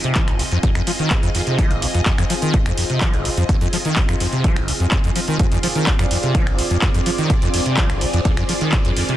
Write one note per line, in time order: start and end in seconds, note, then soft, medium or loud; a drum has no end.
0.00 9.17 C4 medium
0.00 9.17 F4 medium
0.00 9.17 G#4 medium
0.00 5.38 D#5 medium
0.00 closed hi-hat soft
0.04 0.17 C3 medium
0.15 0.29 F3 medium
0.15 kick loud
0.15 clap loud
0.15 closed hi-hat medium
0.28 0.41 F1 medium
0.28 finger snap medium
0.28 closed hi-hat soft
0.39 0.44 F2 loud
0.39 open hi-hat medium
0.52 0.58 F2 loud
0.52 closed hi-hat soft
0.63 0.70 F2 medium
0.63 kick loud
0.63 closed hi-hat medium
0.75 0.82 F2 loud
0.75 finger snap medium
0.75 closed hi-hat soft
0.87 0.91 F3 loud
0.87 open hi-hat loud
0.99 1.13 D#3 loud
0.99 closed hi-hat soft
1.10 1.15 D#2 medium
1.10 kick loud
1.10 clap loud
1.10 closed hi-hat medium
1.23 1.30 F2 loud
1.23 closed hi-hat soft
1.35 1.42 F2 medium
1.35 open hi-hat medium
1.47 1.60 C3 medium
1.47 closed hi-hat soft
1.58 1.72 F3 medium
1.58 kick loud
1.58 closed hi-hat medium
1.71 1.84 F1 medium
1.71 closed hi-hat soft
1.82 1.86 F2 loud
1.82 open hi-hat loud
1.94 2.01 F2 medium
1.94 closed hi-hat soft
2.06 2.13 F2 medium
2.06 kick loud
2.06 clap loud
2.06 closed hi-hat medium
2.18 2.25 F2 loud
2.18 finger snap medium
2.18 closed hi-hat soft
2.30 2.34 F3 loud
2.30 open hi-hat medium
2.42 2.55 D#3 loud
2.42 closed hi-hat soft
2.54 2.58 D#2 medium
2.54 kick loud
2.54 closed hi-hat medium
2.66 2.72 F2 loud
2.66 finger snap medium
2.66 closed hi-hat soft
2.77 2.84 F2 medium
2.77 open hi-hat loud
2.90 3.03 C3 medium
2.90 closed hi-hat soft
3.01 3.15 F3 medium
3.01 kick loud
3.01 clap loud
3.01 closed hi-hat medium
3.14 3.27 F1 medium
3.14 closed hi-hat soft
3.25 3.29 F2 loud
3.25 open hi-hat medium
3.37 3.44 F2 loud
3.37 closed hi-hat soft
3.49 3.56 F2 medium
3.49 kick loud
3.49 closed hi-hat medium
3.61 3.68 F2 loud
3.61 closed hi-hat soft
3.73 3.77 F3 loud
3.73 open hi-hat loud
3.85 3.98 D#3 medium
3.85 closed hi-hat soft
3.96 4.01 D#2 medium
3.96 kick loud
3.96 clap loud
3.96 closed hi-hat medium
4.09 4.15 F2 loud
4.09 finger snap medium
4.09 closed hi-hat soft
4.20 4.27 F2 medium
4.20 open hi-hat medium
4.33 4.46 C3 medium
4.33 closed hi-hat soft
4.44 4.58 F3 medium
4.44 kick loud
4.44 closed hi-hat medium
4.56 4.70 F1 medium
4.56 finger snap medium
4.56 closed hi-hat soft
4.68 4.72 F2 loud
4.68 open hi-hat loud
4.80 4.87 F2 loud
4.80 closed hi-hat soft
4.91 4.99 F2 medium
4.91 kick loud
4.91 clap loud
4.91 closed hi-hat medium
5.04 5.11 F2 loud
5.04 closed hi-hat soft
5.16 5.20 F3 loud
5.16 open hi-hat loud
5.28 5.38 D#3 loud
5.28 closed hi-hat soft
5.39 5.46 F2 medium
5.39 9.17 D5 medium
5.39 kick loud
5.39 closed hi-hat medium
5.52 5.58 F2 medium
5.52 closed hi-hat soft
5.63 5.67 F3 loud
5.63 open hi-hat loud
5.75 5.89 D#3 loud
5.75 closed hi-hat soft
5.87 5.91 D#2 medium
5.87 kick loud
5.87 clap loud
5.87 closed hi-hat medium
5.99 6.06 F2 loud
5.99 finger snap medium
5.99 closed hi-hat soft
6.11 6.18 F2 medium
6.11 open hi-hat medium
6.23 6.36 C3 medium
6.23 closed hi-hat soft
6.35 6.48 F3 medium
6.35 kick loud
6.35 closed hi-hat medium
6.47 6.60 F1 medium
6.47 finger snap medium
6.47 closed hi-hat soft
6.59 6.63 F2 loud
6.59 open hi-hat loud
6.71 6.77 F2 loud
6.71 closed hi-hat soft
6.82 6.89 F2 medium
6.82 kick loud
6.82 clap loud
6.82 closed hi-hat medium
6.94 7.01 F2 loud
6.94 closed hi-hat soft
7.06 7.10 F3 loud
7.06 open hi-hat loud
7.18 7.31 D#3 loud
7.18 closed hi-hat soft
7.30 7.34 D#2 medium
7.30 kick loud
7.30 closed hi-hat medium
7.42 7.49 F2 medium
7.42 closed hi-hat soft
7.54 7.60 F2 medium
7.54 open hi-hat loud
7.66 7.79 C3 medium
7.66 closed hi-hat soft
7.77 7.91 F3 medium
7.77 kick loud
7.77 clap loud
7.77 closed hi-hat medium
7.90 8.03 F1 medium
7.90 finger snap medium
7.90 closed hi-hat soft
8.01 8.06 F2 loud
8.01 open hi-hat medium
8.13 8.20 F2 loud
8.13 closed hi-hat soft
8.25 8.32 F2 medium
8.25 kick loud
8.25 closed hi-hat medium
8.37 8.44 F2 loud
8.37 finger snap medium
8.37 closed hi-hat soft
8.49 8.53 F3 loud
8.49 open hi-hat loud
8.61 8.74 D#3 loud
8.61 closed hi-hat soft
8.72 8.77 D#2 medium
8.72 kick loud
8.72 clap loud
8.72 closed hi-hat medium
8.85 8.92 F2 loud
8.85 closed hi-hat soft
8.97 9.03 F2 medium
8.97 open hi-hat medium
9.09 9.17 C3 medium
9.09 closed hi-hat soft